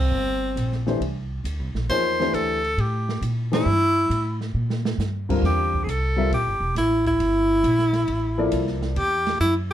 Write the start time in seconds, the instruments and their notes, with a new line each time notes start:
Already playing: upright bass C2, tenor saxophone C4
0.12 upright bass G1
0.56 upright bass A#1, hi-hat pedal, ride
0.72 snare
0.86 grand piano E3 A3 D4 G4 C5, snare
1.00 upright bass C2, ride
1.44 upright bass D2, hi-hat pedal, ride
1.59 upright bass C2
1.74 upright bass A#1, snare
1.89 upright bass E2, grand piano F3 A#3 D#4 G#4 C#5, tenor saxophone C5, ride
2.20 grand piano E3 A3 D4 G4 C5, snare
2.33 upright bass D2, tenor saxophone A4, hi-hat pedal, ride
2.64 ride
2.77 upright bass A2, tenor saxophone G4, ride
3.09 snare
3.21 upright bass A#2, hi-hat pedal, ride
3.52 grand piano E3 A3 D4 G4 C5, tenor saxophone E4, snare, ride
3.66 upright bass G2
4.10 upright bass A2, hi-hat pedal, ride
4.41 snare
4.54 upright bass A#2
4.70 snare
4.85 snare
4.98 upright bass G2, snare, hi-hat pedal
5.29 grand piano D3 G3 C4 F4 A#4, kick, crash
5.42 upright bass E2, tenor saxophone G4, snare
5.74 kick
5.84 upright bass C2, tenor saxophone G#4
5.89 tenor saxophone A4, hi-hat pedal, ride
6.16 grand piano G3 C4 F4 A#4 E5
6.30 upright bass A#1, tenor saxophone G4, ride
6.46 upright bass G1
6.60 upright bass E1
6.75 upright bass A1, tenor saxophone E4, snare, hi-hat pedal, ride
7.06 tenor saxophone E4, kick, ride
7.20 upright bass G1, ride
7.64 upright bass A#1, hi-hat pedal, ride
7.79 snare
7.93 snare, ride
8.08 upright bass A1, ride
8.38 grand piano F3 A#3 E4 A4 D5
8.52 upright bass C2, hi-hat pedal, ride
8.67 snare
8.82 snare
8.96 upright bass E2, tenor saxophone G4, ride
9.27 snare, ride
9.40 upright bass F#2, tenor saxophone E4, hi-hat pedal, ride